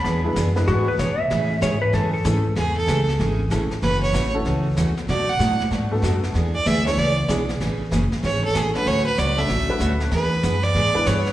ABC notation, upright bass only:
X:1
M:4/4
L:1/8
Q:"Swing" 1/4=191
K:A
V:1 name="Upright bass" clef=bass
E,,2 F,,2 G,,2 B,,2 | A,,2 G,,2 F,,2 G,,2 | E,,2 C,,2 G,,,2 A,,, z | F,,,2 A,,,2 C,,2 E,,2 |
B,,2 A,,2 G,,2 F,,2 | E,,2 D,,2 C,,2 B,,,2 | A,,,2 F,,, z G,,,2 A,,,2 | D,,2 C,,2 A,,,2 D,,2 |
E,,2 F,,2 G,, z =G,,2 |]